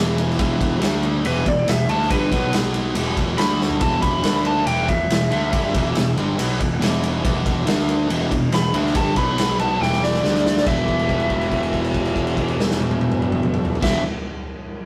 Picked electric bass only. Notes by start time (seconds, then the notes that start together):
Already playing: E1
0.40 E1
0.82 D2
1.25 E1
1.46 E1
1.67 E1
1.89 D2
2.11 G1
2.32 B1
2.95 E1
3.38 D2
3.81 E1
4.23 D2
4.65 E1
4.89 E1
5.10 E1
5.31 D2
5.53 G1
5.75 E1
5.95 E1
6.17 G1
6.38 B1
6.61 E1
6.81 E1
7.25 E1
7.66 D2
8.09 E1
8.31 E1
8.51 E1
8.74 D2
8.95 G1
9.17 B1
9.80 E1
10.23 D2
10.67 E1
13.82 E1